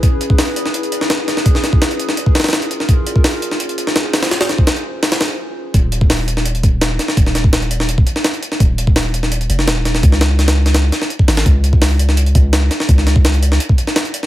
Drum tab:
HH |x---x---o---x---x-x-x---x---x---|x---x---x-x-x---x---oooox-x-x---|x---x---o---x---x-x-x---x---o-o-|o-o-x---x-x-----o-o-o-----------|
SD |--------o-----o-------o-o---o-o-|--o-o---o-----o-----ooooo-----o-|--------o-----o-------o-o---o-o-|o-o-o---o-------o-o-o-----------|
BD |o-----o-------------------------|o-----o-----------o-------------|o-----o-------------------------|------o-------------------------|

HH |x---x---o---x---x-x-x---x---x---|x---x---x-x-x---x---x---x-x-x---|x---x---o---x---x-x-x---x---x---|x---x---x-x---x-x---x---x---o-o-|
SD |--------o-----o---------o---o-o-|--o-o---o-----o-------o-o-----o-|--------o-----o-------o-o---o-o-|--o-o---o-o---o-o---o-o-----o-o-|
BD |o-----o-------------o-----------|o-----o-----------o-------------|o-----o-------------------------|o-------------------------o-----|

HH |x---x---o---x---x-x-x---x---x---|x---x---x-x-x---x---x---x-x-x---|
SD |--------o-----o---------o---o-o-|--o-o---o-----o-------o-o-----o-|
BD |o-----o-------------o-----------|o-----o-----------o-------------|